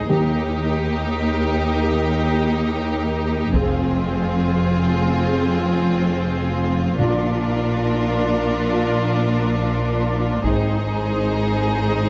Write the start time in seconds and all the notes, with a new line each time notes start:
0.09 D#2 D#3 A#3 D#4 G4 A#4
1.82 A#3 G4
3.54 F1 F2 C4 F4 G#4, taiko
5.26 C4 G#4
6.98 A#1 A#2 D4 F4 A#4
8.73 D4 F4
10.44 G#1 G#2 C4 D#4 G#4 C5, taiko